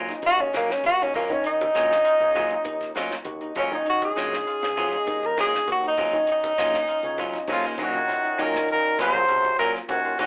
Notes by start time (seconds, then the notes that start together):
Already playing: F#3 A#3 C#4 F4
0.09 D#4, kick, snare, closed hi-hat
0.22 D#2 D#4 F#4, kick, closed hi-hat
0.38 C#4, kick, closed hi-hat
0.53 F#3 A#3 C#4 F#4, snare, closed hi-hat, high conga
0.69 C#4, snare, closed hi-hat
0.84 D#2 F#4, kick, closed hi-hat, high conga
1.00 C#4 D#4, snare, closed hi-hat
1.14 F#3 A#3 C#4 F4, kick, open hi-hat, high conga, low conga
1.30 D#3 C#4, closed hi-hat
1.44 D#4, closed hi-hat
1.61 high conga
1.74 A#1 F#3 A#3 C#4 F4, snare, closed hi-hat
1.91 snare
2.05 F4, closed hi-hat
2.20 C#2 C#4, closed hi-hat, high conga
2.35 F#3 A#3 C#4 F4, closed hi-hat, high conga, low conga
2.50 D#4, kick
2.64 D#2 D#4, kick, closed hi-hat
2.81 kick, snare, closed hi-hat
2.95 F#3 A#3 C#4 F4 F#4, snare, closed hi-hat, high conga
3.10 snare, closed hi-hat
3.25 D#2 F#4, kick, closed hi-hat, high conga
3.41 D#4, closed hi-hat
3.55 F#3 A#3 C#4 F4, kick, closed hi-hat, high conga, low conga
3.71 D#3 C#4 D#4
3.85 D#4, closed hi-hat
3.89 F#4
4.02 G#4, high conga
4.16 A#1 F#3 A#3 C#4 F4, snare, closed hi-hat
4.33 snare
4.47 F4, closed hi-hat
4.62 C#2, snare, high conga
4.76 F#3 C#4 F4, snare, closed hi-hat, high conga, low conga
4.92 D#4, kick, closed hi-hat
5.07 D#2 D#4, kick, closed hi-hat
5.23 A#4, kick, closed hi-hat
5.37 F#3 A#3 C#4 F4 F#4 G#4, snare, closed hi-hat, high conga
5.54 snare, closed hi-hat, high conga
5.67 D#2 F#4, kick, closed hi-hat, high conga
5.72 F#4
5.83 D#4, closed hi-hat
5.88 D#4
5.97 F#3 A#3 C#4 F4, kick, open hi-hat, high conga, low conga
6.13 D#3 C#4, closed hi-hat
6.27 D#4, closed hi-hat
6.32 D#4
6.44 high conga
6.58 A#1 F#3 A#3 C#4 F4, snare, closed hi-hat
6.74 snare
6.88 F4, closed hi-hat
7.03 C#2 C#4, closed hi-hat, high conga
7.17 F#3 C#4 F4, muted clean electric guitar stroke, closed hi-hat, high conga, low conga
7.33 D#4, kick, snare
7.47 D#2 F2 F#3 A#3 C#4, muted clean electric guitar stroke, kick, crash, high conga, low conga
7.52 C#3 F4
7.64 A#3 C#4 F4, snare, closed hi-hat
7.78 A#1 F#2 D#3 F#3 A#3 C#4 D#4 F4, closed hi-hat, high conga
7.83 F#4
7.94 C#4, closed hi-hat, high conga
8.08 F4, snare, closed hi-hat, high conga
8.24 D#4, muted fingered electric bass stroke, closed hi-hat, high conga
8.38 A#2 D#3 F#3 A#3 C#4 F4 A#4, open hi-hat
8.54 kick, snare
8.69 A#2 F#3 A#4, closed hi-hat, high conga
8.98 A#1 C3 F#3 A#3 C#4 F4 C5, kick, snare, closed hi-hat, high conga
9.14 kick, closed hi-hat
9.28 C#2, closed hi-hat, high conga
9.44 F#4, kick
9.59 A#2 F#3 A#3 C#4 F4 A#4, closed hi-hat, low conga
9.74 snare, closed hi-hat
9.89 D#2 F#2 D#3 C#4 F#4, kick, closed hi-hat, high conga, low conga
10.05 F4, closed hi-hat
10.19 A#1 F#2 D#3 A#3 C#4 D#4 F4 F#4, snare, closed hi-hat, high conga